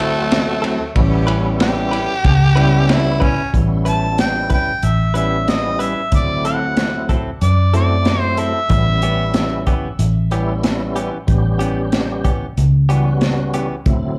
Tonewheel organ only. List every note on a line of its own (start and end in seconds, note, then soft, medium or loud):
0.00 0.78 F#3 medium
0.00 0.78 A3 medium
0.00 0.78 C4 medium
0.00 0.79 F#4 medium
0.95 2.00 G3 medium
0.95 2.00 B3 medium
0.95 2.01 C#4 medium
0.95 2.00 E4 loud
2.56 3.35 G3 medium
2.56 3.35 B3 medium
2.56 3.36 C#4 medium
2.56 3.36 E4 loud
3.53 4.58 G3 medium
3.53 4.58 B3 medium
3.53 4.58 C#4 medium
3.53 4.59 E4 medium
5.14 5.94 G3 medium
5.14 5.94 B3 medium
5.14 5.94 C#4 medium
5.14 5.95 E4 medium
6.12 7.16 F#3 medium
6.12 7.16 A3 medium
6.12 7.16 C4 medium
6.12 7.17 E4 medium
7.73 8.52 F#3 medium
7.73 8.53 A3 medium
7.73 8.53 C4 medium
7.73 8.53 E4 medium
8.69 9.74 G3 medium
8.69 9.75 B3 medium
8.69 9.75 C#4 medium
8.69 9.75 E4 medium
10.31 11.10 G3 medium
10.31 11.10 B3 medium
10.31 11.11 C#4 medium
10.31 11.11 E4 medium
11.27 12.32 G3 medium
11.27 12.32 B3 medium
11.27 12.33 C#4 medium
11.27 12.33 G4 medium
12.89 13.68 G3 medium
12.89 13.68 B3 medium
12.89 13.68 C#4 medium
12.89 13.69 F#4 medium
13.86 14.19 F#3 medium
13.86 14.19 A3 medium
13.86 14.19 C4 medium
13.86 14.19 E4 medium